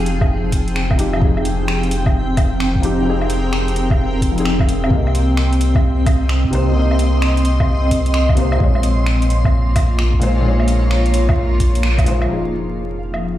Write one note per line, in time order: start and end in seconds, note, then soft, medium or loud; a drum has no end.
0.00 4.89 F1 medium
0.00 0.96 F3 medium
0.00 4.90 F3 medium
0.00 8.60 C4 medium
0.00 0.98 D#4 medium
0.00 1.00 G4 medium
0.00 0.98 G#4 medium
0.00 2.06 G#4 medium
0.00 9.59 G5 medium
0.06 closed hi-hat medium
0.21 kick loud
0.21 low woodblock medium
0.52 kick medium
0.52 closed hi-hat medium
0.68 closed hi-hat soft
0.76 finger snap loud
0.90 kick loud
0.90 low woodblock medium
0.96 1.15 F3 medium
0.96 1.19 D#4 medium
0.96 1.20 G4 loud
0.96 closed hi-hat medium
1.13 2.79 F3 medium
1.13 low woodblock medium
1.21 2.81 D#4 medium
1.21 kick loud
1.25 2.83 G#4 medium
1.37 low woodblock soft
1.45 closed hi-hat medium
1.68 finger snap loud
1.83 closed hi-hat soft
1.90 5.55 A#4 medium
1.90 closed hi-hat medium
2.06 kick loud
2.06 low woodblock medium
2.37 kick loud
2.37 closed hi-hat medium
2.37 low woodblock medium
2.60 finger snap loud
2.75 kick medium
2.81 3.00 F3 medium
2.81 3.04 D#4 medium
2.81 3.05 G4 medium
2.81 closed hi-hat medium
3.02 4.30 F3 medium
3.02 4.33 D#4 medium
3.10 4.35 G#4 medium
3.22 low woodblock soft
3.30 closed hi-hat medium
3.53 finger snap loud
3.68 closed hi-hat soft
3.76 closed hi-hat medium
3.90 kick loud
3.90 low woodblock medium
4.21 kick medium
4.21 closed hi-hat medium
4.32 4.86 F3 medium
4.36 4.88 D#4 medium
4.36 closed hi-hat soft
4.40 4.90 G#4 medium
4.45 finger snap loud
4.59 kick loud
4.59 low woodblock medium
4.69 closed hi-hat medium
4.84 6.48 C3 medium
4.84 low woodblock medium
4.90 8.58 C2 medium
4.90 6.50 A#3 medium
4.90 kick loud
4.94 6.52 D#5 medium
5.07 low woodblock soft
5.15 closed hi-hat medium
5.37 10.11 D#5 loud
5.37 finger snap loud
5.50 13.38 C6 medium
5.50 closed hi-hat soft
5.61 closed hi-hat medium
5.75 kick loud
5.75 low woodblock medium
6.06 kick loud
6.06 closed hi-hat medium
6.06 low woodblock medium
6.29 finger snap loud
6.44 kick medium
6.51 6.70 C3 medium
6.51 6.73 A#3 medium
6.51 closed hi-hat medium
6.55 6.75 C5 medium
6.72 8.33 C3 medium
6.76 8.35 A#3 medium
6.80 8.37 D#5 medium
6.91 low woodblock soft
6.99 closed hi-hat medium
7.22 finger snap loud
7.37 closed hi-hat soft
7.45 closed hi-hat medium
7.60 kick loud
7.60 low woodblock medium
7.91 kick medium
7.91 closed hi-hat medium
8.06 closed hi-hat soft
8.14 finger snap loud
8.29 kick loud
8.29 low woodblock medium
8.35 8.57 C3 medium
8.35 8.58 A#3 medium
8.35 closed hi-hat medium
8.39 8.59 C5 medium
8.52 low woodblock medium
8.56 12.28 A#1 medium
8.56 10.18 A#2 medium
8.56 10.20 G#3 medium
8.56 kick loud
8.62 12.94 A#3 medium
8.62 10.22 C#5 medium
8.75 low woodblock soft
8.83 13.38 F4 medium
8.83 closed hi-hat medium
9.06 finger snap loud
9.22 closed hi-hat soft
9.30 closed hi-hat medium
9.45 kick loud
9.45 low woodblock medium
9.49 12.30 C#5 medium
9.76 kick loud
9.76 closed hi-hat medium
9.76 low woodblock medium
9.99 finger snap loud
10.14 kick medium
10.20 10.39 A#2 medium
10.20 10.43 G#3 medium
10.20 10.44 C5 loud
10.20 closed hi-hat medium
10.41 12.02 A#2 medium
10.41 12.04 G#3 medium
10.48 12.06 C#5 medium
10.60 low woodblock soft
10.68 closed hi-hat medium
10.91 finger snap loud
11.06 closed hi-hat soft
11.14 closed hi-hat medium
11.29 kick loud
11.29 low woodblock medium
11.60 kick medium
11.60 closed hi-hat medium
11.75 closed hi-hat soft
11.83 finger snap loud
11.98 kick loud
11.98 closed hi-hat soft
11.98 low woodblock medium
12.04 12.26 A#2 medium
12.04 12.27 G#3 medium
12.04 12.28 C5 medium
12.04 closed hi-hat medium
12.22 low woodblock medium
12.26 13.38 F1 medium
12.26 13.38 F3 medium
12.26 13.38 D#4 medium
12.26 13.38 F5 medium
12.33 13.38 G#4 medium
12.47 13.38 G5 medium
12.58 13.38 C4 medium
13.14 low woodblock soft